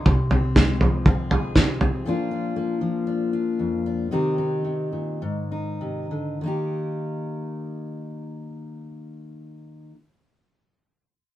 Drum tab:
SD |--o---o-|--------|--------|--------|
FT |oooooooo|--------|--------|--------|
BD |o-o-o-o-|--------|--------|--------|

SD |--------|
FT |--------|
BD |--------|